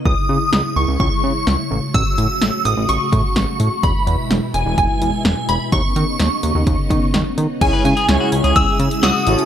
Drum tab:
CC |----------------|----------------|----------------|----------------|
HH |----------------|x-x-x-x-x-x-x-x-|x-x-x-x-x-x-x-x-|x-x-x-x-x-x-x-x-|
SD |----o-------o---|----o-------o---|----o-------o---|----o-------o---|
BD |o-------o-------|o---------o-----|o-------o-------|o-------o-o-----|

CC |x---------------|
HH |x-xxx-xxx-xxx-xx|
SD |----o-------o---|
BD |o-------o-------|